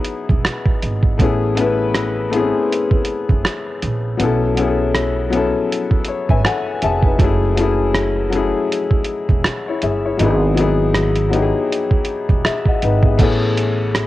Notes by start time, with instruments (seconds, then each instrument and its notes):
Already playing: upright piano F#3 B3 D#4 E4 G#4 B4
0.05 closed hi-hat
0.29 upright bass E1, kick
0.45 cross-stick, closed hi-hat
0.66 kick
0.82 upright bass G#1, closed hi-hat
1.03 kick
1.18 upright bass A1, upright piano A3 B3 C#4, kick, closed hi-hat
1.22 upright piano E4 G#4
1.55 upright piano A3 B3 C#4, closed hi-hat
1.60 upright piano E4 B4
1.94 cross-stick, closed hi-hat
2.30 upright piano A3 B3 C4, closed hi-hat
2.35 upright piano E4 G#4
2.40 upright piano C#4
2.72 closed hi-hat
2.91 kick
3.05 closed hi-hat
3.29 upright bass F#1, kick
3.45 cross-stick, closed hi-hat
3.82 upright bass A#1, closed hi-hat
4.17 upright bass B1, upright piano F#3 B3 C#4, closed hi-hat
4.22 upright piano E4 A4
4.55 upright piano F#3 B3 C#4, closed hi-hat
4.59 upright piano E4 G#4
4.67 upright piano A4
4.95 cross-stick, closed hi-hat
5.30 upright piano F#3 B3 C#4, closed hi-hat
5.35 upright piano E4 A4
5.72 closed hi-hat
5.91 kick
6.05 upright piano C#5, closed hi-hat
6.29 upright bass G#1, upright piano B4 E5 G#5, kick
6.45 upright piano A4 F#5 G#5, cross-stick, closed hi-hat
6.82 upright bass F1, upright piano G#4 E5 A5, closed hi-hat
7.03 upright piano D#4 B4, kick
7.18 upright bass F#1, upright piano F#3 A3 C#4, kick, closed hi-hat
7.23 upright piano E4 G#4
7.55 upright piano F#3 A3 C#4, closed hi-hat
7.60 upright piano E4 G#4
7.94 cross-stick, closed hi-hat
8.30 upright piano F#3 A3 C#4, closed hi-hat
8.35 upright piano E4 G#4
8.72 closed hi-hat
8.91 kick
9.05 closed hi-hat
9.29 upright bass E1, kick
9.44 cross-stick, closed hi-hat
9.68 upright piano E4 C#5
9.82 upright bass G1, upright piano G#4 E5, closed hi-hat
10.06 upright piano E4 C#5
10.17 upright bass G#1, upright piano F#3 B3 D#4, closed hi-hat
10.22 upright piano E4 G#4
10.54 upright piano F#3 B3 D#4, closed hi-hat
10.59 upright piano E4 G#4
10.94 cross-stick, closed hi-hat
11.16 closed hi-hat
11.29 upright piano F#3 B3 D#4, closed hi-hat
11.34 upright piano E4 G4
11.42 upright piano G#4
11.72 closed hi-hat
11.91 kick
12.05 closed hi-hat
12.29 upright bass E1, kick
12.45 upright piano G#4 E5, cross-stick, closed hi-hat
12.65 upright piano F#4 D#5, kick
12.82 upright bass G#1, upright piano D#4 B4, closed hi-hat
13.03 upright piano B3 G#4, kick
13.18 upright bass A1, upright piano A3 B3 C#4, kick, closed hi-hat, crash
13.22 upright piano E4 G#4
13.57 closed hi-hat
13.95 cross-stick, closed hi-hat